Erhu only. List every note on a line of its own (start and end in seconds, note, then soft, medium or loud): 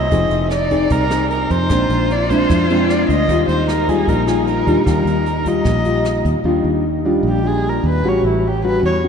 0.00 0.51 D#5 medium
0.53 0.93 D5 medium
0.92 1.31 A#4 medium
1.31 1.52 A#4 medium
1.51 2.13 C5 medium
2.12 2.32 D5 medium
2.30 2.89 C5 medium
2.91 3.08 D5 medium
3.10 3.46 D#5 medium
3.49 3.67 C5 medium
3.70 3.91 A#4 medium
3.89 4.11 G#4 medium
4.09 4.28 A#4 medium
4.30 4.47 G#4 medium
4.49 4.85 A#4 medium
4.89 5.50 A#4 medium
5.48 6.26 D#5 medium
7.29 7.49 G4 medium
7.47 7.71 G#4 medium
7.69 7.86 A#4 medium
7.89 8.10 B4 medium
8.09 8.26 C#5 medium
8.28 8.49 E4 soft
8.48 8.65 G4 medium
8.65 8.83 B4 medium
8.85 8.97 C#5 medium